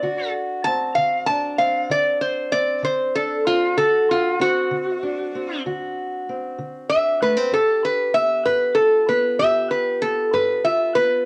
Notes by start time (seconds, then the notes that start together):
Already playing: D4 D5
0.03 D3 F#4
0.64 C4 A5
0.95 D3 F5
1.26 D4 A5
1.58 C4 F5
1.90 D3 D5
2.21 C5
2.52 C4 D5
2.83 D3 C5
3.15 D4 A4
3.46 C4 F4
3.77 D3 F#4 A4
4.11 F4
4.40 C4 F#4
4.71 D3
5.03 D4
5.35 C4
5.66 D3 F#4
6.29 C4
6.58 D3
6.89 D4 E5
7.22 A3 B4
7.37 C4
7.52 G2 G4 A4
7.85 B4
8.14 B3 E5
8.46 G2 B4
8.75 F4 A4
9.09 B3 B4
9.39 G2 G4 E5
9.71 B4
10.02 B3 A4
10.33 G2 B4
10.64 F4 E5
10.95 B3 B4